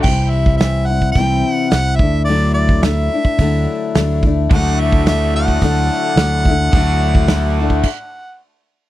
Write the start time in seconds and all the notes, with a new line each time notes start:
0.03 C2 C3 E3 G5, kick, crash
0.07 G3 C4 E4
0.30 E5
0.46 kick
0.57 E5, snare, open hi-hat
0.62 E3 G3 C4 E4
0.86 E4 F#5
0.92 G3 C4
1.02 kick
1.12 C2 G5, kick, open hi-hat
1.17 C3 E3 G3 C4 E4
1.51 F#5
1.70 C2 E3 G3 C4 F#5, snare, open hi-hat
1.75 E4
1.95 E5, kick
2.00 D2 A3 D4 E4
2.25 D3 D5, open hi-hat
2.29 F#3 A3 D4 E4
2.54 D5
2.69 kick
2.82 F#3 A3 D4 E4 E5, snare, open hi-hat
3.14 A3 D4 E4
3.25 kick
3.38 D2 D3 F#3 A3 D4 E4, kick, open hi-hat
3.95 D2 F#3 A3 D4 E4, snare, open hi-hat
4.23 D4 E4, kick
4.27 A3
4.51 D2 D3 F#3 A3 D4 F#4 F#5, kick, open hi-hat
4.55 E4
4.80 E5
4.92 kick
5.06 F#3 A3 D4 E5, snare, open hi-hat
5.11 E4
5.36 F#5
5.48 kick
5.61 D2 D3 F#3 A3 D4 E4, kick, open hi-hat
6.16 D2 F#3 A3 D4, snare, open hi-hat
6.21 E4
6.45 E4, kick
6.50 A3 D4
6.73 D2 D3 F#3 A3 D4 E4 F#4, kick, open hi-hat
7.15 kick
7.28 F#3 A3, snare, open hi-hat
7.32 D4 E4
7.60 A3 D4 E4
7.70 kick
7.83 kick, crash